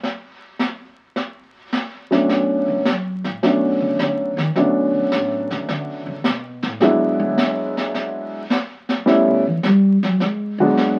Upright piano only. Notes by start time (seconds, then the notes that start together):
2.11 F#3 A3 B3 C#4 D4
3.43 F#3 A3 B3 C#4 D4
4.56 F#3 A3 B3 C#4 D4
6.81 F#3 G#3 B3 D4 E4
9.06 G3 A3 B3 C#4 E4
10.60 F#3 G#3 B3 D4 F#4